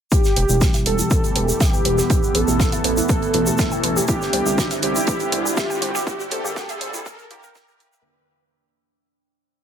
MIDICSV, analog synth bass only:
0, 0, Header, 1, 2, 480
1, 0, Start_track
1, 0, Key_signature, 1, "minor"
1, 0, Tempo, 495868
1, 114, Time_signature, 4, 2, 24, 8
1, 9329, End_track
2, 0, Start_track
2, 0, Title_t, "Analog synth bass"
2, 0, Program_c, 0, 38
2, 354, Note_on_c, 0, 28, 101
2, 431, Note_off_c, 0, 28, 0
2, 478, Note_on_c, 0, 28, 90
2, 624, Note_off_c, 0, 28, 0
2, 833, Note_on_c, 0, 28, 79
2, 986, Note_off_c, 0, 28, 0
2, 1314, Note_on_c, 0, 28, 107
2, 1467, Note_off_c, 0, 28, 0
2, 1794, Note_on_c, 0, 28, 84
2, 1946, Note_off_c, 0, 28, 0
2, 2273, Note_on_c, 0, 33, 102
2, 2351, Note_off_c, 0, 33, 0
2, 2396, Note_on_c, 0, 33, 94
2, 2543, Note_off_c, 0, 33, 0
2, 2754, Note_on_c, 0, 33, 78
2, 2906, Note_off_c, 0, 33, 0
2, 3233, Note_on_c, 0, 33, 103
2, 3386, Note_off_c, 0, 33, 0
2, 3714, Note_on_c, 0, 33, 81
2, 3867, Note_off_c, 0, 33, 0
2, 4194, Note_on_c, 0, 36, 99
2, 4271, Note_off_c, 0, 36, 0
2, 4317, Note_on_c, 0, 36, 101
2, 4464, Note_off_c, 0, 36, 0
2, 4673, Note_on_c, 0, 36, 77
2, 4826, Note_off_c, 0, 36, 0
2, 5153, Note_on_c, 0, 36, 103
2, 5306, Note_off_c, 0, 36, 0
2, 5632, Note_on_c, 0, 36, 85
2, 5786, Note_off_c, 0, 36, 0
2, 6113, Note_on_c, 0, 31, 99
2, 6191, Note_off_c, 0, 31, 0
2, 6238, Note_on_c, 0, 31, 99
2, 6384, Note_off_c, 0, 31, 0
2, 6594, Note_on_c, 0, 31, 81
2, 6746, Note_off_c, 0, 31, 0
2, 7074, Note_on_c, 0, 43, 101
2, 7227, Note_off_c, 0, 43, 0
2, 9329, End_track
0, 0, End_of_file